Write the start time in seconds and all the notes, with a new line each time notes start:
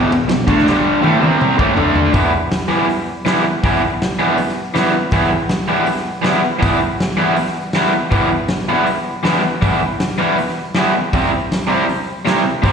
Already playing: E3
0.10 E2 B2, ride
0.28 E2 B2, snare, ride
0.39 snare
0.47 D3 A3 D4, kick, ride
0.58 snare
0.67 G2 D3 G3, snare
1.02 A2 E3 A3, high tom
1.20 C3 G3 C4, high tom
1.41 mid tom
1.57 A2 E3 A3, kick
1.77 D3 A3 D4, floor tom
1.96 floor tom
2.13 E3 G3 B3 E4, kick, open hi-hat
2.51 snare, open hi-hat
2.68 E3 G3 B3 E4
2.89 open hi-hat
3.25 E3 G3 B3 E4, snare, open hi-hat
3.64 E3 G3 B3 E4, kick, open hi-hat
4.02 snare, open hi-hat
4.19 E3 G3 B3 E4
4.38 open hi-hat
4.49 snare
4.74 E3 G3 B3 E4, snare, open hi-hat
5.11 E3 G3 B3 E4, kick, open hi-hat
5.49 snare, open hi-hat
5.69 E3 G3 B3 E4
5.86 open hi-hat
5.97 snare
6.23 E3 G3 B3 E4, snare, open hi-hat
6.59 E3 G3 B3 E4, kick, open hi-hat
7.00 snare, open hi-hat
7.11 snare
7.17 E3 G3 B3 E4
7.36 open hi-hat
7.46 snare
7.73 E3 G3 B3 E4, snare, open hi-hat
8.11 E3 G3 B3 E4, kick, open hi-hat
8.48 snare, open hi-hat
8.69 E3 G3 B3 E4
8.87 open hi-hat
9.23 E3 G3 B3 E4, snare, open hi-hat
9.61 E3 G3 B3 E4, kick, open hi-hat
10.00 snare, open hi-hat
10.18 E3 G3 B3 E4
10.38 open hi-hat
10.48 snare
10.74 E3 G3 B3 E4, snare, open hi-hat
11.13 C3 G3 C4 E4, kick, open hi-hat
11.52 snare, open hi-hat
11.68 C3 G3 C4 E4
11.89 open hi-hat
12.25 C3 G3 C4 E4, snare, open hi-hat
12.62 C3 G3 C4 E4, kick, open hi-hat